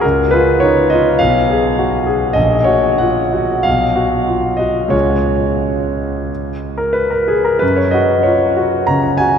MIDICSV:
0, 0, Header, 1, 2, 480
1, 0, Start_track
1, 0, Key_signature, 6, "major"
1, 0, Tempo, 582524
1, 27, Time_signature, 4, 2, 24, 8
1, 1947, Tempo, 637620
1, 3387, Tempo, 668896
1, 5787, Tempo, 624350
1, 7144, End_track
2, 0, Start_track
2, 0, Title_t, "Grand piano"
2, 0, Program_c, 0, 0
2, 0, Control_c, 0, 64, 127
2, 12, Note_on_c, 0, 70, 52
2, 27, Note_on_c, 0, 37, 41
2, 40, Control_c, 0, 64, 0
2, 170, Control_c, 0, 64, 127
2, 254, Note_on_c, 0, 71, 54
2, 260, Note_off_c, 0, 70, 0
2, 274, Note_on_c, 0, 65, 37
2, 495, Note_on_c, 0, 73, 58
2, 499, Note_off_c, 0, 71, 0
2, 517, Note_on_c, 0, 63, 29
2, 651, Note_off_c, 0, 65, 0
2, 738, Note_off_c, 0, 73, 0
2, 740, Note_on_c, 0, 75, 58
2, 749, Note_off_c, 0, 63, 0
2, 763, Note_on_c, 0, 65, 38
2, 953, Note_off_c, 0, 37, 0
2, 978, Note_on_c, 0, 77, 64
2, 980, Note_off_c, 0, 75, 0
2, 991, Note_off_c, 0, 65, 0
2, 995, Note_on_c, 0, 35, 44
2, 997, Control_c, 0, 64, 0
2, 1118, Control_c, 0, 64, 127
2, 1239, Note_on_c, 0, 68, 37
2, 1474, Note_on_c, 0, 66, 29
2, 1612, Note_off_c, 0, 68, 0
2, 1697, Note_off_c, 0, 77, 0
2, 1700, Note_on_c, 0, 68, 38
2, 1708, Note_off_c, 0, 66, 0
2, 1923, Note_on_c, 0, 75, 64
2, 1925, Note_off_c, 0, 35, 0
2, 1939, Note_on_c, 0, 34, 40
2, 1947, Note_off_c, 0, 68, 0
2, 1959, Control_c, 0, 64, 0
2, 2098, Control_c, 0, 64, 127
2, 2158, Note_on_c, 0, 73, 51
2, 2176, Note_on_c, 0, 66, 35
2, 2179, Note_off_c, 0, 75, 0
2, 2414, Note_on_c, 0, 78, 56
2, 2428, Note_off_c, 0, 73, 0
2, 2432, Note_on_c, 0, 65, 29
2, 2585, Note_off_c, 0, 66, 0
2, 2675, Note_on_c, 0, 66, 35
2, 2683, Note_off_c, 0, 65, 0
2, 2892, Note_off_c, 0, 34, 0
2, 2901, Note_on_c, 0, 77, 58
2, 2909, Note_off_c, 0, 78, 0
2, 2916, Note_on_c, 0, 35, 35
2, 2918, Note_off_c, 0, 66, 0
2, 2940, Control_c, 0, 64, 0
2, 3053, Control_c, 0, 64, 127
2, 3147, Note_on_c, 0, 66, 33
2, 3385, Note_on_c, 0, 65, 24
2, 3520, Note_off_c, 0, 66, 0
2, 3596, Note_on_c, 0, 75, 50
2, 3605, Note_off_c, 0, 77, 0
2, 3615, Note_on_c, 0, 66, 28
2, 3616, Note_off_c, 0, 65, 0
2, 3818, Note_on_c, 0, 37, 32
2, 3825, Note_on_c, 0, 56, 23
2, 3827, Note_off_c, 0, 35, 0
2, 3834, Note_on_c, 0, 61, 25
2, 3836, Note_on_c, 0, 73, 48
2, 3844, Note_on_c, 0, 65, 23
2, 3848, Note_off_c, 0, 75, 0
2, 3858, Note_off_c, 0, 66, 0
2, 3872, Control_c, 0, 64, 0
2, 4002, Control_c, 0, 64, 127
2, 4847, Control_c, 0, 64, 0
2, 4993, Control_c, 0, 64, 127
2, 5181, Note_on_c, 0, 70, 41
2, 5184, Note_off_c, 0, 73, 0
2, 5290, Note_on_c, 0, 71, 43
2, 5307, Note_off_c, 0, 70, 0
2, 5417, Note_on_c, 0, 70, 38
2, 5422, Note_off_c, 0, 71, 0
2, 5541, Note_on_c, 0, 68, 41
2, 5545, Note_off_c, 0, 70, 0
2, 5662, Note_on_c, 0, 70, 43
2, 5666, Note_off_c, 0, 68, 0
2, 5738, Note_off_c, 0, 37, 0
2, 5742, Note_off_c, 0, 56, 0
2, 5746, Note_off_c, 0, 61, 0
2, 5751, Note_off_c, 0, 65, 0
2, 5767, Note_on_c, 0, 71, 53
2, 5782, Note_off_c, 0, 70, 0
2, 5784, Note_on_c, 0, 42, 35
2, 5803, Control_c, 0, 64, 0
2, 5898, Note_off_c, 0, 71, 0
2, 5899, Note_on_c, 0, 73, 40
2, 5917, Control_c, 0, 64, 127
2, 6010, Note_on_c, 0, 75, 52
2, 6024, Note_off_c, 0, 73, 0
2, 6034, Note_on_c, 0, 66, 30
2, 6257, Note_on_c, 0, 73, 42
2, 6259, Note_off_c, 0, 75, 0
2, 6274, Note_on_c, 0, 65, 26
2, 6414, Note_off_c, 0, 66, 0
2, 6512, Note_off_c, 0, 65, 0
2, 6515, Note_on_c, 0, 66, 33
2, 6719, Note_off_c, 0, 42, 0
2, 6744, Note_off_c, 0, 73, 0
2, 6745, Note_on_c, 0, 82, 60
2, 6757, Note_on_c, 0, 49, 30
2, 6897, Note_off_c, 0, 66, 0
2, 6982, Note_on_c, 0, 80, 57
2, 6987, Note_off_c, 0, 82, 0
2, 7003, Note_on_c, 0, 66, 32
2, 7135, Note_off_c, 0, 49, 0
2, 7144, Note_off_c, 0, 66, 0
2, 7144, Note_off_c, 0, 80, 0
2, 7144, End_track
0, 0, End_of_file